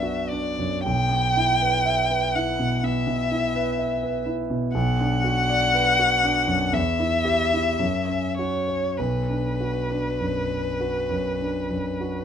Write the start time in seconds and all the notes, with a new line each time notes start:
Already playing: F#2 B3 D4 F#4 B4 D5 E5
0.03 F#4
0.29 D4 D5
0.59 F#2
0.84 B1 G5
1.10 B3
1.37 E4
1.62 B4
1.85 E5
2.10 B4
2.35 E4 F#5
2.59 B2
2.84 B3 E5
3.07 B2
3.32 E4
3.56 B4
3.79 E5
4.03 B4
4.26 E4
4.50 B2
4.74 B1 F#5
5.00 D4
5.24 F#4
5.49 D5
5.74 B4
5.99 F#4
6.24 D4
6.48 F#2
6.73 E2 E5
6.99 E4
7.25 G4
7.54 E4
7.80 F#2
8.09 C#4
8.38 F#4 C#5
8.67 C#5
8.98 B1 B4
9.29 D4
9.60 F#4
9.90 D4
10.21 F#2
10.50 B4
10.80 F#4
11.10 F#2
11.41 D4
11.70 F#2
12.01 F#4